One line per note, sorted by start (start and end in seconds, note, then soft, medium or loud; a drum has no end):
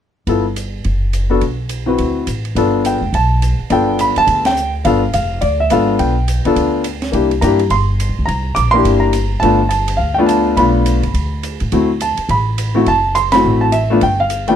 0.27 0.82 G1 medium
0.27 0.43 B3 medium
0.27 0.43 E4 soft
0.27 0.43 F4 soft
0.27 0.44 A4 medium
0.27 ride medium
0.56 hi-hat pedal medium
0.56 ride medium
0.84 1.39 F#1 medium
0.84 ride soft
1.13 hi-hat pedal medium
1.13 ride medium
1.30 1.40 B3 medium
1.30 1.41 D4 soft
1.30 1.41 F#4 medium
1.30 1.41 A4 medium
1.41 1.96 B1 medium
1.41 ride soft
1.69 hi-hat pedal soft
1.69 ride medium
1.86 2.25 C4 medium
1.86 2.25 E4 soft
1.86 2.25 F#4 medium
1.86 2.26 B4 medium
1.98 2.26 D2 medium
1.98 ride medium
2.27 2.54 A1 medium
2.27 hi-hat pedal medium
2.27 ride medium
2.45 ride soft
2.55 2.98 G1 medium
2.55 2.98 B3 medium
2.55 2.99 D4 medium
2.55 2.99 F4 medium
2.55 2.99 A4 medium
2.55 ride medium
2.85 3.12 G5 medium
2.85 hi-hat pedal medium
2.85 ride medium
3.01 3.12 F1 medium
3.13 3.55 B1 medium
3.13 3.57 A5 medium
3.13 ride medium
3.42 hi-hat pedal medium
3.42 ride medium
3.59 muted upright bass stroke soft
3.70 4.13 G1 medium
3.70 4.49 B3 medium
3.70 4.49 D4 medium
3.70 4.50 F4 medium
3.70 4.50 A4 medium
3.70 3.98 G5 medium
3.70 ride medium
3.99 4.16 B5 medium
3.99 hi-hat pedal medium
3.99 ride medium
4.16 4.46 A5 loud
4.16 muted upright bass stroke soft
4.16 ride soft
4.27 4.82 D2 medium
4.27 ride medium
4.45 4.72 G5 medium
4.45 snare medium
4.45 ride medium
4.56 hi-hat pedal medium
4.85 5.12 G1 medium
4.85 5.00 B3 medium
4.85 5.01 D4 medium
4.85 5.01 F4 medium
4.85 5.01 A4 medium
4.85 5.11 F5 medium
4.85 ride medium
5.13 5.40 F1 medium
5.13 5.43 F5 medium
5.13 hi-hat pedal medium
5.13 ride medium
5.41 5.69 D2 medium
5.41 5.59 D5 medium
5.41 ride medium
5.60 5.71 E5 medium
5.70 5.98 G#1 medium
5.70 6.13 B3 medium
5.70 6.13 D4 medium
5.70 6.14 F4 medium
5.70 6.14 A4 medium
5.70 6.01 F5 medium
5.70 hi-hat pedal soft
5.70 ride medium
5.99 6.42 B1 medium
5.99 6.98 G5 medium
5.99 ride medium
6.28 hi-hat pedal medium
6.28 ride medium
6.45 6.83 B3 medium
6.45 6.83 D4 medium
6.45 6.83 F4 medium
6.45 6.84 A4 medium
6.45 muted upright bass stroke soft
6.45 ride soft
6.56 7.11 D2 medium
6.56 ride medium
6.84 hi-hat pedal medium
6.84 ride medium
7.02 snare medium
7.02 ride soft
7.12 7.40 C2 medium
7.12 7.28 A#3 medium
7.12 7.29 D4 medium
7.12 7.29 E4 medium
7.12 7.30 G4 medium
7.12 ride soft
7.31 ride soft
7.41 7.69 G2 medium
7.41 7.58 A#3 medium
7.41 7.58 D4 medium
7.41 7.59 E4 medium
7.41 7.59 G4 medium
7.41 7.69 A#5 medium
7.41 hi-hat pedal medium
7.41 ride medium
7.59 ride soft
7.70 8.06 G1 medium
7.70 8.14 C6 medium
7.70 ride medium
8.00 hi-hat pedal medium
8.00 ride medium
8.09 8.18 C2 medium
8.19 8.27 C#2 medium
8.26 8.55 C2 medium
8.26 8.57 A#5 medium
8.26 ride medium
8.55 8.84 A#1 medium
8.55 8.72 D6 medium
8.55 hi-hat pedal medium
8.55 ride medium
8.71 9.12 A#3 medium
8.71 9.12 D4 medium
8.71 9.13 E4 medium
8.71 9.02 C6 loud
8.76 9.13 G4 medium
8.85 9.40 G1 medium
8.85 ride medium
9.00 9.28 A#5 medium
9.13 hi-hat pedal medium
9.13 ride medium
9.40 9.97 G1 medium
9.40 9.58 A3 medium
9.40 9.58 B3 medium
9.40 9.59 D4 medium
9.40 9.68 A5 loud
9.40 ride medium
9.44 9.59 F4 medium
9.69 9.97 A5 medium
9.69 hi-hat pedal medium
9.69 ride medium
9.88 ride medium
9.97 10.54 D2 medium
9.97 10.14 F5 medium
10.14 10.56 A3 medium
10.14 10.19 G5 medium
10.19 10.56 B3 medium
10.19 10.56 D4 medium
10.19 10.57 F4 medium
10.27 10.54 A5 medium
10.27 hi-hat pedal medium
10.27 ride medium
10.57 11.00 B1 medium
10.57 11.00 A3 medium
10.57 11.00 B3 medium
10.57 11.01 D4 medium
10.57 11.01 F4 medium
10.57 11.56 B5 medium
10.57 ride medium
10.86 hi-hat pedal medium
10.86 ride medium
11.03 11.13 F#1 medium
11.03 ride soft
11.14 11.57 D2 medium
11.14 ride medium
11.43 hi-hat pedal medium
11.43 ride medium
11.60 11.72 A2 medium
11.60 ride soft
11.72 12.15 D2 medium
11.72 11.88 A3 medium
11.72 11.88 C4 medium
11.72 11.88 E4 medium
11.72 11.88 F#4 medium
11.72 ride medium
12.01 12.28 A5 medium
12.01 hi-hat pedal medium
12.01 ride medium
12.17 muted upright bass stroke soft
12.17 ride soft
12.29 12.84 A1 medium
12.29 12.83 B5 medium
12.29 ride medium
12.58 hi-hat pedal medium
12.58 ride medium
12.75 12.85 A3 medium
12.75 12.85 C4 medium
12.75 12.86 E4 medium
12.75 12.86 F#4 medium
12.86 13.41 F#1 medium
12.86 13.14 A5 loud
12.86 ride medium
13.15 13.33 C6 loud
13.15 hi-hat pedal medium
13.15 ride medium
13.32 13.70 A3 medium
13.32 13.71 C4 medium
13.32 13.71 E4 medium
13.32 13.72 F#4 medium
13.32 13.62 B5 loud
13.32 snare medium
13.32 ride medium
13.45 13.99 A1 medium
13.61 13.73 A5 medium
13.72 13.99 E5 medium
13.72 hi-hat pedal medium
13.72 ride medium
13.90 14.01 A3 medium
13.90 14.01 B3 medium
13.90 14.01 D4 medium
13.90 14.01 F4 medium
14.01 14.56 G1 medium
14.01 14.20 G5 loud
14.01 ride medium
14.20 14.46 F5 medium
14.30 hi-hat pedal medium
14.30 ride medium
14.48 14.56 A3 medium
14.48 14.56 B3 medium
14.48 14.56 D4 medium
14.48 14.56 F4 medium
14.48 14.56 G5 loud
14.48 ride soft